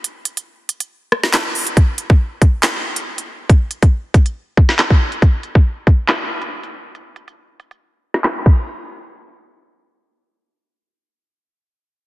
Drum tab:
CC |----------------|----------------|----------------|----------------|
HH |x-xx--xx----x-ox|x-x---x-x--x-x--|x-xx--xx----x--x|x-x---x-x--x-x--|
CP |------------x---|--------x-------|------------x---|--------x-------|
SD |----------roo---|--------o-------|-----------oo---|--------o-------|
BD |----------------|o--o--o---------|o--o--o---o--o--|o--o--o---------|

CC |--------------x-|----------------|----------------|
HH |x-xx--xx----x---|----------------|----------------|
CP |------------x---|----------------|----------------|
SD |-----------oo---|----------------|----------------|
BD |--------------o-|----------------|----------------|